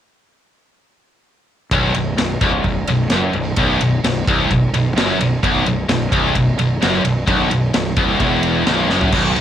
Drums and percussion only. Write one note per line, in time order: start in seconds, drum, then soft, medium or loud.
1.71 kick loud
1.71 ride loud
1.95 ride medium
2.18 snare loud
2.18 ride loud
2.41 kick loud
2.41 ride medium
2.64 kick medium
2.64 ride medium
2.87 ride medium
3.10 snare loud
3.10 ride loud
3.33 ride medium
3.56 kick loud
3.56 ride loud
3.81 ride medium
4.04 snare loud
4.04 ride loud
4.27 kick loud
4.27 ride medium
4.50 kick medium
4.50 ride medium
4.74 ride medium
4.97 snare loud
4.97 ride loud
5.21 ride medium
5.43 kick loud
5.43 ride medium
5.66 ride medium
5.89 snare loud
5.89 ride loud
6.12 kick loud
6.12 ride medium
6.35 kick medium
6.35 ride loud
6.59 ride medium
6.82 snare loud
6.82 ride medium
7.05 ride medium
7.28 kick loud
7.28 ride loud
7.51 ride medium
7.74 snare loud
7.74 ride loud
7.96 kick loud
7.96 ride medium
8.20 kick loud
8.20 ride medium
8.43 ride medium
8.67 snare loud
8.67 ride medium
8.90 snare medium
9.01 floor tom medium
9.13 kick loud
9.13 crash loud
9.36 ride medium